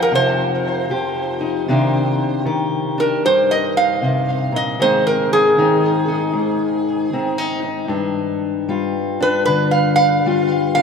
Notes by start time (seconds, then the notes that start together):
Already playing: F2 F3 D#4 G4
0.02 A#4
0.11 C3
0.15 C5
0.90 F3 G4
1.41 D#4
1.68 C3 D#3 A#3 D4 G4
2.45 D#3 G4
2.98 D4 A#4
3.25 G2 C5
3.51 D#5
3.77 F5
4.02 C3
4.52 A#2
4.56 D#5
4.80 G#2 D#3 C4 D#4 G#4 C5
5.07 A#4
5.33 G#4
5.57 D#3 D#4
6.08 D#4
6.33 G#2
7.13 D#3 C4
7.38 D#4
7.63 D#4
7.88 G2 D4
8.68 G3 F4
9.20 D4 B4
9.45 D3 B4
9.71 F5
9.96 F5
10.26 G3 F4
10.75 D4 F5